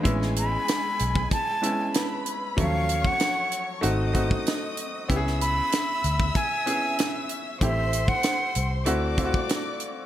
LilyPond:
<<
  \new Staff \with { instrumentName = "Flute" } { \time 4/4 \key a \major \tempo 4 = 95 r8 b''4. a''4. r8 | f''8. fis''4 r2 r16 | r8 b''4. gis''4. r8 | e''8. fis''4 r2 r16 | }
  \new Staff \with { instrumentName = "Violin section" } { \time 4/4 \key a \major <gis gis''>2. <b' b''>4 | <cis'' cis'''>2 <dis'' dis'''>2 | <e'' e'''>1 | <c'' c'''>2 <d'' d'''>2 | }
  \new Staff \with { instrumentName = "Grand piano" } { \time 4/4 \key a \major <gis b cis' e'>2 r8 <gis b cis' e'>4. | <f fis a cis'>2 <a bis dis' fis'>8 <a bis dis' fis'>4. | <b cis' e' g' gis'>2 r8 <b cis' e' gis'>4. | <a c' e' g'>2 <a c' e' fis'>8 <a c' e' f' fis'>4. | }
  \new Staff \with { instrumentName = "Fingered electric bass" } { \clef bass \time 4/4 \key a \major a,,4 r8 b,,8 r2 | dis,4 r4 gis,,4 r4 | cis,4 r8 d,8 r2 | a,,4 r8 c,8 d,4 r4 | }
  \new DrumStaff \with { instrumentName = "Drums" } \drummode { \time 4/4 <hh bd>16 sn16 hh8 <hh sn>8 hh16 bd16 <hh bd>8 hh8 <hh sn>8 hh8 | <hh bd>8 hh16 bd16 <hh sn>8 hh8 hh8 <hh bd>16 bd16 <hh sn>8 hh8 | <hh bd>16 sn16 hh8 <hh sn>8 hh16 bd16 <hh bd>8 hh8 <hh sn>8 hh8 | <hh bd>8 hh16 bd16 <hh sn>8 hh8 hh8 <hh bd>16 bd16 <hh sn>8 hh8 | }
>>